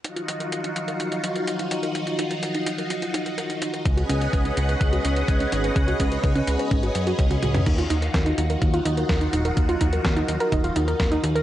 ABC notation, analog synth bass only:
X:1
M:4/4
L:1/8
Q:1/4=126
K:Ebm
V:1 name="Analog synth bass" clef=bass
z8 | z8 | D,, D,, D,, D,, D,, D,, D,, A,,, | D,, D,, D,, D,, A,,, G,, D,, D,, |
E,, E,, E,, E,, E,, E,, E,, E,,, | E,, E,, E,, E,, E,,, E,, E,, E,, |]